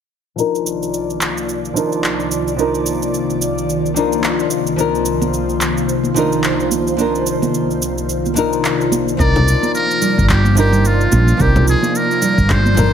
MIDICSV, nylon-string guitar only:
0, 0, Header, 1, 2, 480
1, 0, Start_track
1, 0, Key_signature, -3, "minor"
1, 0, Tempo, 550459
1, 337, Time_signature, 4, 2, 24, 8
1, 11277, End_track
2, 0, Start_track
2, 0, Title_t, "Nylon-string guitar"
2, 0, Program_c, 0, 24
2, 310, Note_on_c, 0, 53, 72
2, 327, Note_on_c, 0, 62, 63
2, 335, Note_on_c, 0, 63, 66
2, 348, Note_on_c, 0, 70, 79
2, 1500, Note_off_c, 0, 53, 0
2, 1508, Note_off_c, 0, 62, 0
2, 1512, Note_off_c, 0, 63, 0
2, 1512, Note_on_c, 0, 53, 73
2, 1518, Note_off_c, 0, 70, 0
2, 1527, Note_on_c, 0, 62, 69
2, 1536, Note_on_c, 0, 63, 69
2, 1548, Note_on_c, 0, 70, 85
2, 2220, Note_off_c, 0, 53, 0
2, 2228, Note_off_c, 0, 62, 0
2, 2233, Note_off_c, 0, 63, 0
2, 2234, Note_on_c, 0, 53, 70
2, 2239, Note_off_c, 0, 70, 0
2, 2244, Note_on_c, 0, 62, 64
2, 2255, Note_on_c, 0, 63, 70
2, 2268, Note_on_c, 0, 70, 80
2, 3421, Note_off_c, 0, 53, 0
2, 3426, Note_off_c, 0, 62, 0
2, 3432, Note_off_c, 0, 63, 0
2, 3436, Note_on_c, 0, 53, 79
2, 3438, Note_off_c, 0, 70, 0
2, 3449, Note_on_c, 0, 62, 74
2, 3461, Note_on_c, 0, 63, 74
2, 3473, Note_on_c, 0, 70, 87
2, 4143, Note_off_c, 0, 53, 0
2, 4149, Note_off_c, 0, 62, 0
2, 4152, Note_on_c, 0, 53, 72
2, 4155, Note_off_c, 0, 63, 0
2, 4161, Note_off_c, 0, 70, 0
2, 4165, Note_on_c, 0, 62, 74
2, 4179, Note_on_c, 0, 63, 70
2, 4190, Note_on_c, 0, 70, 83
2, 5341, Note_off_c, 0, 53, 0
2, 5347, Note_off_c, 0, 62, 0
2, 5354, Note_off_c, 0, 63, 0
2, 5357, Note_on_c, 0, 53, 83
2, 5359, Note_off_c, 0, 70, 0
2, 5366, Note_on_c, 0, 62, 77
2, 5381, Note_on_c, 0, 63, 79
2, 5392, Note_on_c, 0, 70, 85
2, 6063, Note_off_c, 0, 53, 0
2, 6068, Note_off_c, 0, 62, 0
2, 6075, Note_off_c, 0, 63, 0
2, 6075, Note_on_c, 0, 53, 75
2, 6081, Note_off_c, 0, 70, 0
2, 6086, Note_on_c, 0, 62, 68
2, 6101, Note_on_c, 0, 63, 72
2, 6112, Note_on_c, 0, 70, 87
2, 7262, Note_off_c, 0, 53, 0
2, 7268, Note_off_c, 0, 62, 0
2, 7271, Note_on_c, 0, 53, 82
2, 7275, Note_off_c, 0, 63, 0
2, 7281, Note_off_c, 0, 70, 0
2, 7284, Note_on_c, 0, 62, 73
2, 7294, Note_on_c, 0, 63, 72
2, 7311, Note_on_c, 0, 70, 91
2, 7980, Note_off_c, 0, 53, 0
2, 7987, Note_off_c, 0, 62, 0
2, 7992, Note_off_c, 0, 63, 0
2, 7997, Note_on_c, 0, 53, 80
2, 8000, Note_off_c, 0, 70, 0
2, 8008, Note_on_c, 0, 62, 75
2, 8020, Note_on_c, 0, 63, 68
2, 8035, Note_on_c, 0, 70, 87
2, 9183, Note_off_c, 0, 53, 0
2, 9188, Note_off_c, 0, 62, 0
2, 9195, Note_off_c, 0, 63, 0
2, 9201, Note_on_c, 0, 53, 80
2, 9202, Note_off_c, 0, 70, 0
2, 9210, Note_on_c, 0, 62, 77
2, 9223, Note_on_c, 0, 63, 77
2, 9237, Note_on_c, 0, 70, 94
2, 9905, Note_off_c, 0, 53, 0
2, 9909, Note_off_c, 0, 62, 0
2, 9916, Note_off_c, 0, 63, 0
2, 9916, Note_on_c, 0, 53, 73
2, 9923, Note_off_c, 0, 70, 0
2, 9926, Note_on_c, 0, 62, 69
2, 9941, Note_on_c, 0, 63, 67
2, 9954, Note_on_c, 0, 70, 90
2, 11102, Note_off_c, 0, 53, 0
2, 11108, Note_off_c, 0, 62, 0
2, 11114, Note_on_c, 0, 53, 79
2, 11115, Note_off_c, 0, 63, 0
2, 11121, Note_off_c, 0, 70, 0
2, 11129, Note_on_c, 0, 62, 77
2, 11138, Note_on_c, 0, 63, 73
2, 11153, Note_on_c, 0, 70, 90
2, 11277, Note_off_c, 0, 53, 0
2, 11277, Note_off_c, 0, 62, 0
2, 11277, Note_off_c, 0, 63, 0
2, 11277, Note_off_c, 0, 70, 0
2, 11277, End_track
0, 0, End_of_file